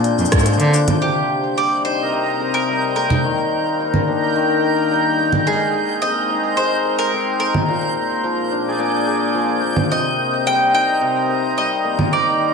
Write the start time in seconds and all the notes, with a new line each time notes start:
Already playing: A#2 D#3 F3 G#3 A#3 C4 D4 G#4 A#4 D5 G6
0.04 closed hi-hat, cabasa
0.18 F2 A#3, cabasa
0.25 cabasa
0.32 G#2, kick, cross-stick, closed hi-hat, cabasa
0.39 cabasa
0.46 F3, closed hi-hat, cabasa
0.53 cabasa
0.60 D3, closed hi-hat, cabasa
0.74 D4, cabasa
0.88 closed hi-hat, low conga, cabasa
1.01 C3 G4 G6
1.42 C4
1.57 G3 D5
1.85 D#4 C5
2.02 A#4 D#5
2.12 C3
2.41 A#4
2.54 A#4
2.69 G3
2.96 A#3 A#4
3.10 low conga
3.24 D#3
3.59 A#3
3.80 G3 A#4
3.94 low conga
4.08 D4
4.23 G5
4.35 D#3
4.63 A#4
4.91 G3
5.19 A#3
5.32 low conga
5.46 G#3 G#4
5.70 D#4
6.02 C4 D#5
6.11 A#4
6.30 D#4
6.45 C5
6.57 G#3 C5
6.85 A#4
6.99 A#4
7.13 C4
7.40 C4 A#4
7.54 low conga
7.68 A#2
8.00 A#3
8.24 F3
8.52 D4
8.68 G#4 D5
8.79 A#2
9.07 G#4
9.34 F3
9.62 A#3
9.76 low conga
9.90 C3 D#5
10.19 D#5
10.46 G3 G5
10.68 C4
10.74 D#4 A#4 G5
11.01 C3
11.29 A#4
11.57 G3 D#5
11.84 A#3
11.99 low conga
12.12 D#3 D5